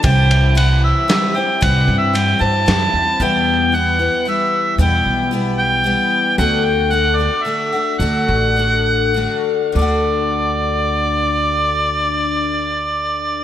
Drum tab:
RD |xxx-x-|x-x-x-|------|------|
SD |----o-|----o-|------|------|
BD |o-----|o-----|------|------|

RD |------|------|------|------|
SD |------|------|------|------|
BD |------|------|------|------|